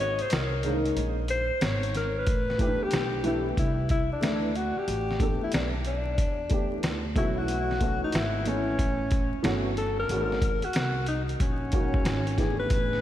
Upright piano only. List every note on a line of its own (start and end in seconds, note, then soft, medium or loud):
0.63 1.13 D#3 medium
0.63 1.13 G#3 medium
0.63 1.14 A#3 medium
0.63 1.14 C#4 medium
0.63 0.73 D4 medium
0.72 1.18 D#4 medium
2.58 3.21 E3 medium
2.58 3.22 A3 medium
2.58 3.23 B3 medium
2.58 2.68 C#4 medium
2.58 3.54 G4 medium
2.66 3.24 D4 medium
3.23 3.74 E3 medium
3.23 3.74 A3 medium
3.23 3.74 B3 medium
3.23 3.75 D4 medium
3.23 3.75 E4 medium
4.21 4.47 E3 medium
4.21 4.48 A3 medium
4.21 4.48 B3 medium
4.21 4.49 D4 medium
4.21 4.49 E4 medium
5.19 5.69 E3 medium
5.19 5.70 A3 medium
5.19 5.70 B3 medium
5.19 5.71 D4 medium
5.19 5.71 A4 medium
6.49 7.00 E3 medium
6.49 7.00 A3 medium
6.49 7.01 B3 medium
6.49 7.01 D4 medium
6.49 7.01 G4 medium
7.14 7.24 D#3 medium
7.14 7.72 A3 medium
7.14 7.72 B3 medium
7.14 7.73 C#4 medium
7.14 7.73 F#4 medium
7.21 7.75 E3 medium
7.79 8.43 E3 medium
7.79 8.44 A3 medium
7.79 8.44 B3 medium
7.79 8.45 C#4 medium
7.79 8.75 F#4 medium
8.44 8.95 E3 medium
8.44 8.96 A3 medium
8.44 8.96 B3 medium
8.44 8.96 C#4 medium
8.44 8.97 E4 medium
9.42 9.69 E3 medium
9.42 9.70 A3 medium
9.42 9.70 B3 medium
9.42 9.70 C#4 medium
9.42 9.71 F#4 medium
10.08 10.35 D#3 medium
10.08 10.35 G#3 soft
10.08 10.35 A#3 medium
10.08 10.36 C#4 medium
10.08 10.36 F#4 medium
11.71 12.65 D#3 medium
11.71 12.66 G#3 soft
11.71 12.66 A#3 medium
11.71 12.66 C#4 medium
11.71 12.67 F#4 medium
12.37 13.01 E3 medium
12.37 13.01 A3 medium
12.37 13.01 B3 medium
12.37 13.01 D4 medium
12.37 13.01 G4 medium